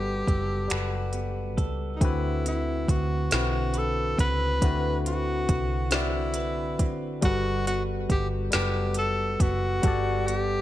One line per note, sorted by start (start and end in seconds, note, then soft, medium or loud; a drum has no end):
0.00 0.23 G1 medium
0.00 0.68 G3 medium
0.00 2.00 G3 medium
0.00 1.14 B3 medium
0.00 0.70 F#4 medium
0.00 2.03 F#4 medium
0.00 1.53 G4 loud
0.00 0.27 A4 medium
0.00 0.71 A4 medium
0.00 0.73 B4 medium
0.00 0.21 F#5 medium
0.27 0.67 F#1 medium
0.27 1.57 A4 medium
0.27 kick medium
0.27 closed hi-hat soft
0.68 1.59 F#1 medium
0.68 1.50 G3 medium
0.68 2.49 F#4 medium
0.68 1.52 A4 medium
0.68 1.51 F#5 medium
0.68 finger snap medium
0.68 closed hi-hat medium
0.73 1.52 B4 medium
1.13 2.46 B3 soft
1.13 closed hi-hat medium
1.57 1.98 C#2 medium
1.57 3.75 A4 medium
1.57 kick medium
1.57 closed hi-hat soft
1.96 2.05 D#4 medium
2.00 2.84 D2 medium
2.00 2.81 D3 medium
2.00 4.61 D3 medium
2.00 2.82 C4 medium
2.00 2.82 E4 medium
2.00 2.46 E4 loud
2.00 2.83 F#4 medium
2.00 kick loud
2.00 closed hi-hat medium
2.05 2.83 B4 medium
2.46 3.31 C4 medium
2.46 2.92 E4 medium
2.46 closed hi-hat medium
2.88 3.28 D2 medium
2.88 5.48 F#4 medium
2.88 3.32 F#4 medium
2.88 kick medium
2.88 closed hi-hat medium
3.30 4.15 B1 medium
3.30 4.12 D3 medium
3.30 4.12 C4 medium
3.30 4.17 C4 medium
3.30 4.13 E4 medium
3.30 4.13 F#4 medium
3.30 3.80 F#4 loud
3.30 snare loud
3.30 closed hi-hat medium
3.35 4.14 B4 medium
3.74 6.35 B4 medium
3.74 closed hi-hat medium
3.78 4.20 A4 loud
4.18 4.58 C#2 medium
4.18 5.03 C4 medium
4.18 5.02 B4 loud
4.18 kick medium
4.18 closed hi-hat medium
4.62 5.45 D2 medium
4.62 5.42 D3 medium
4.62 8.12 D3 medium
4.62 5.43 C4 medium
4.62 5.43 E4 medium
4.62 5.44 F#4 medium
4.62 kick loud
4.62 closed hi-hat medium
4.66 5.45 B4 medium
5.05 5.91 C4 medium
5.05 5.97 F#4 loud
5.05 closed hi-hat medium
5.48 6.80 C2 medium
5.48 8.10 F#4 medium
5.48 kick loud
5.48 closed hi-hat medium
5.90 6.72 D3 medium
5.90 6.72 C4 medium
5.90 6.78 C4 medium
5.90 6.73 E4 medium
5.90 6.73 F#4 medium
5.90 snare loud
5.90 closed hi-hat medium
5.94 6.92 E4 medium
5.94 6.74 D5 medium
6.34 8.97 B4 medium
6.34 closed hi-hat medium
6.79 7.19 F#1 medium
6.79 7.32 C4 medium
6.79 kick medium
6.79 closed hi-hat medium
7.21 8.06 G1 medium
7.21 8.03 G3 medium
7.21 9.83 G3 loud
7.21 8.03 F#4 medium
7.21 7.64 F#4 loud
7.21 8.04 A4 medium
7.21 kick loud
7.21 closed hi-hat medium
7.26 8.05 B4 medium
7.67 8.53 B3 medium
7.67 7.84 F#4 loud
7.67 closed hi-hat medium
8.10 8.49 G1 loud
8.10 10.62 F#4 medium
8.10 8.28 G4 medium
8.10 kick medium
8.10 closed hi-hat medium
8.51 9.37 F#1 medium
8.51 9.33 G3 medium
8.51 9.41 B3 medium
8.51 8.94 G4 loud
8.51 9.34 A4 medium
8.51 9.33 F#5 medium
8.51 snare loud
8.51 closed hi-hat medium
8.55 9.35 B4 medium
8.94 10.62 A4 medium
8.94 closed hi-hat medium
8.99 9.43 A4 loud
9.40 9.80 F#1 medium
9.40 10.28 B3 medium
9.40 10.29 F#4 loud
9.40 kick medium
9.40 closed hi-hat medium
9.82 10.62 G1 loud
9.82 10.62 G3 medium
9.82 10.62 G3 loud
9.82 10.62 A4 medium
9.82 10.62 F#5 medium
9.82 kick loud
9.82 closed hi-hat medium
9.87 10.62 D5 loud
10.27 10.62 B3 medium
10.27 10.62 G4 loud
10.27 closed hi-hat medium